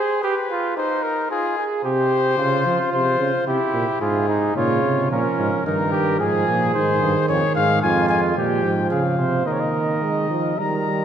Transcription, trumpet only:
0.00 0.21 C5 medium
0.22 0.75 B4 medium
0.77 1.04 C5 medium
1.03 1.30 A#4 medium
1.31 1.65 G#4 medium
1.84 2.88 C5 medium
2.93 3.46 C5 medium
3.47 4.01 G4 medium
4.01 4.56 G#4 medium
4.57 5.08 C#5 medium
5.11 5.65 A#4 medium
5.67 6.20 A#4 medium
6.20 6.74 G#4 medium
6.74 7.27 C5 medium
7.28 7.54 C#5 medium
7.55 7.81 F5 medium
7.82 8.09 G#5 medium
8.09 8.21 G#5 medium
8.36 8.90 G5 medium
8.90 9.45 F5 medium
9.45 9.54 D#5 medium
9.53 9.62 C#5 medium
9.60 10.61 D#5 medium
10.59 11.05 A#5 medium

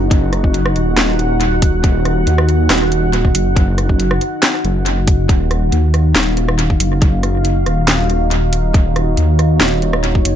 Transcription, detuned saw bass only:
0.00 0.74 F#1 loud
0.76 1.82 D#1 loud
1.84 2.25 D#1 loud
2.27 2.68 D#2 loud
2.70 3.33 D#1 loud
3.35 4.19 F#1 loud
4.65 5.28 F#1 loud
5.29 5.71 D#1 loud
5.72 6.14 D#2 medium
6.15 6.78 D#1 loud
6.80 7.65 F#1 loud
7.66 8.73 D#1 loud
8.74 9.16 D#1 loud
9.18 9.59 D#2 loud
9.61 10.24 D#1 loud
10.25 10.36 F#1 loud

